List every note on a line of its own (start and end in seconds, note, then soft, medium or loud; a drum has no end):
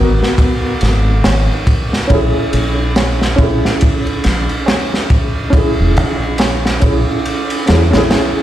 0.00 0.19 G#1 loud
0.00 2.12 B3 medium
0.00 2.12 F#4 medium
0.00 2.12 A#4 medium
0.23 snare soft
0.38 kick loud
0.38 ride medium
0.81 1.21 G#1 medium
0.81 snare soft
0.81 ride medium
1.24 1.48 G#1 medium
1.24 snare loud
1.24 ride medium
1.24 tabla na medium
1.67 kick medium
1.67 ride medium
1.93 snare soft
2.07 2.33 A#1 medium
2.07 3.33 C#4 medium
2.07 3.35 E4 medium
2.07 kick medium
2.07 ride medium
2.14 3.37 G#4 medium
2.53 3.36 A#1 medium
2.53 ride medium
2.96 snare loud
2.96 ride medium
2.96 tabla na medium
3.22 snare medium
3.36 3.62 A#1 medium
3.36 5.48 C#4 medium
3.36 5.49 E4 medium
3.36 kick loud
3.36 ride medium
3.43 5.51 G#4 medium
3.65 snare soft
3.81 kick loud
3.81 ride medium
4.07 ride soft
4.24 4.48 A#1 medium
4.24 snare soft
4.24 ride medium
4.49 ride soft
4.66 snare loud
4.66 ride medium
4.66 tabla na medium
4.94 snare soft
5.10 kick loud
5.10 ride medium
5.50 6.76 C#4 medium
5.50 6.78 E4 medium
5.50 kick loud
5.50 ride medium
5.57 6.80 G#4 medium
5.80 5.98 E1 medium
5.97 6.79 A#1 medium
5.97 ride medium
6.38 snare loud
6.38 ride medium
6.38 tabla na medium
6.66 snare soft
6.80 7.05 A#1 medium
6.80 7.63 C#4 medium
6.80 7.64 E4 medium
6.80 7.65 G#4 medium
6.80 kick medium
6.80 ride medium
7.25 ride medium
7.50 ride medium
7.66 7.91 E2 medium
7.66 7.86 C#4 medium
7.66 7.87 E4 medium
7.66 7.88 G#4 medium
7.66 snare loud
7.66 ride medium
7.90 8.09 A#1 medium
7.90 8.43 C#4 medium
7.90 8.43 E4 medium
7.90 snare loud
7.90 ride medium
7.97 8.43 G#4 loud
8.10 snare loud
8.10 ride medium
8.10 tabla na medium